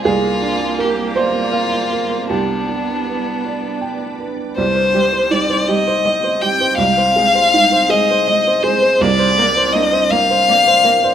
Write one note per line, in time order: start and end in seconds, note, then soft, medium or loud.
0.04 2.25 C2 medium
0.04 2.31 A#3 medium
0.04 2.25 C4 medium
0.04 0.82 F4 medium
0.04 0.75 G#4 loud
0.04 2.30 A#4 medium
0.04 4.57 D5 medium
0.42 1.01 D4 medium
0.78 1.19 G4 medium
0.78 1.13 A#4 medium
1.16 2.29 F4 medium
1.16 2.25 C5 medium
1.16 1.76 D5 medium
1.52 2.14 F5 soft
1.93 2.30 A#4 soft
2.27 4.54 C2 medium
2.27 4.37 B3 medium
2.27 4.56 D4 medium
2.27 4.16 D4 medium
2.27 4.16 G4 medium
2.27 4.57 B4 medium
2.69 3.29 D4 soft
3.06 3.67 B4 soft
3.45 4.05 D5 soft
3.81 4.42 G5 soft
4.20 4.57 B4 soft
4.55 6.75 C2 medium
4.55 4.65 G3 medium
4.55 8.96 C4 medium
4.55 8.96 D#4 medium
4.55 6.74 G4 medium
4.55 5.33 C5 medium
4.75 5.05 C5 medium
4.94 5.03 G3 medium
4.94 5.24 G4 medium
5.12 5.43 C5 medium
5.31 5.40 G3 medium
5.31 5.61 D#4 medium
5.31 5.69 D5 medium
5.50 5.80 C5 medium
5.67 5.78 G3 medium
5.67 5.98 G4 medium
5.67 6.43 D#5 loud
5.87 6.17 C5 medium
6.05 6.13 G3 medium
6.05 6.35 D#5 medium
6.24 6.53 C5 medium
6.42 6.52 G3 medium
6.42 6.71 G4 medium
6.42 6.77 G5 medium
6.61 6.79 C5 medium
6.78 8.96 C2 medium
6.78 6.87 G#3 medium
6.78 9.02 G#4 medium
6.78 7.91 F5 loud
6.97 7.27 C5 medium
7.16 7.25 G#3 medium
7.16 7.46 G#4 medium
7.35 7.64 C5 medium
7.54 7.63 G#3 medium
7.54 7.83 D#4 medium
7.72 8.01 C5 medium
7.89 8.00 G#3 medium
7.89 8.20 G#4 medium
7.89 8.65 D#5 loud
8.10 8.39 C5 medium
8.27 8.37 G#3 medium
8.27 8.57 D#5 medium
8.47 8.76 C5 medium
8.63 8.74 G#3 medium
8.63 8.93 G#4 medium
8.63 9.03 C5 loud
8.81 9.00 C5 medium
9.00 11.14 C2 medium
9.00 9.09 A#3 medium
9.00 11.14 C4 medium
9.00 11.14 A#4 medium
9.00 9.74 D5 loud
9.00 11.14 F5 medium
9.19 9.48 C5 medium
9.38 9.46 A#3 medium
9.38 9.67 A#4 medium
9.56 9.85 C5 medium
9.73 9.82 A#3 medium
9.73 10.04 D4 medium
9.73 10.12 D#5 loud
9.92 10.22 C5 medium
10.11 10.19 A#3 medium
10.11 10.41 A#4 medium
10.11 11.14 F5 loud
10.30 10.59 C5 medium
10.49 10.57 A#3 medium
10.49 10.78 D5 medium
10.67 10.96 C5 medium
10.84 10.92 A#3 medium
10.84 11.14 A#4 medium
11.04 11.14 C5 medium